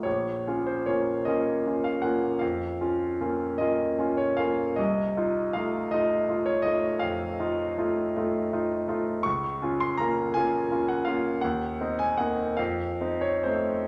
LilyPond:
\new Staff \with { instrumentName = "Grand piano" } { \time 12/8 \key bes \minor \tempo 4. = 53 << { des''8. c''16 des''8 ees''8. f''16 ges''8 f''4. ees''8. des''16 f''8 | ees''4 f''8 ees''8. des''16 ees''8 f''2. | des'''8. c'''16 bes''8 aes''8. ges''16 f''8 ges''8. aes''16 ges''8 f''8. des''16 c''8 | } \\ { bes,,8 <des' f'>8 <bes des' f'>8 <bes des' f'>8 <des' f'>8 <bes des' f'>8 f,8 <des' f'>8 <bes des' f'>8 <bes des' f'>8 <des' f'>8 <bes des' f'>8 | c,8 <ees' f'>8 <a ees' f'>8 <a ees' f'>8 <ees' f'>8 <a ees' f'>8 f,8 <ees' f'>8 <a ees' f'>8 <a ees' f'>8 <ees' f'>8 <a ees' f'>8 | des,8 <des' f'>8 <bes des' f'>8 <bes des' f'>8 <des' f'>8 <bes des' f'>8 ees,8 <c' ees'>8 <bes c' ees'>8 f,8 <c' ees'>8 <a c' ees'>8 | } >> }